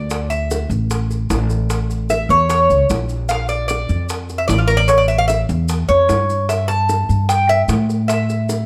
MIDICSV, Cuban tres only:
0, 0, Header, 1, 2, 480
1, 0, Start_track
1, 0, Tempo, 399467
1, 124, Time_signature, 4, 2, 24, 8
1, 10403, End_track
2, 0, Start_track
2, 0, Title_t, "Cuban tres"
2, 0, Program_c, 0, 25
2, 0, Note_on_c, 0, 74, 84
2, 317, Note_off_c, 0, 74, 0
2, 361, Note_on_c, 0, 76, 89
2, 809, Note_off_c, 0, 76, 0
2, 2524, Note_on_c, 0, 76, 89
2, 2756, Note_off_c, 0, 76, 0
2, 2768, Note_on_c, 0, 73, 91
2, 2983, Note_off_c, 0, 73, 0
2, 2998, Note_on_c, 0, 73, 86
2, 3446, Note_off_c, 0, 73, 0
2, 3952, Note_on_c, 0, 77, 109
2, 4187, Note_off_c, 0, 77, 0
2, 4191, Note_on_c, 0, 74, 93
2, 4408, Note_off_c, 0, 74, 0
2, 4422, Note_on_c, 0, 74, 86
2, 4878, Note_off_c, 0, 74, 0
2, 5266, Note_on_c, 0, 76, 82
2, 5374, Note_off_c, 0, 76, 0
2, 5379, Note_on_c, 0, 74, 93
2, 5506, Note_off_c, 0, 74, 0
2, 5508, Note_on_c, 0, 65, 62
2, 5618, Note_on_c, 0, 70, 103
2, 5631, Note_off_c, 0, 65, 0
2, 5731, Note_on_c, 0, 74, 102
2, 5746, Note_off_c, 0, 70, 0
2, 5862, Note_off_c, 0, 74, 0
2, 5863, Note_on_c, 0, 73, 84
2, 5980, Note_on_c, 0, 74, 88
2, 5989, Note_off_c, 0, 73, 0
2, 6100, Note_off_c, 0, 74, 0
2, 6104, Note_on_c, 0, 76, 101
2, 6224, Note_off_c, 0, 76, 0
2, 6229, Note_on_c, 0, 77, 104
2, 6336, Note_off_c, 0, 77, 0
2, 6341, Note_on_c, 0, 76, 99
2, 6491, Note_off_c, 0, 76, 0
2, 7072, Note_on_c, 0, 73, 94
2, 7749, Note_off_c, 0, 73, 0
2, 7799, Note_on_c, 0, 76, 86
2, 8022, Note_off_c, 0, 76, 0
2, 8027, Note_on_c, 0, 81, 113
2, 8707, Note_off_c, 0, 81, 0
2, 8760, Note_on_c, 0, 79, 82
2, 8994, Note_off_c, 0, 79, 0
2, 9004, Note_on_c, 0, 76, 110
2, 9148, Note_off_c, 0, 76, 0
2, 9710, Note_on_c, 0, 76, 80
2, 10388, Note_off_c, 0, 76, 0
2, 10403, End_track
0, 0, End_of_file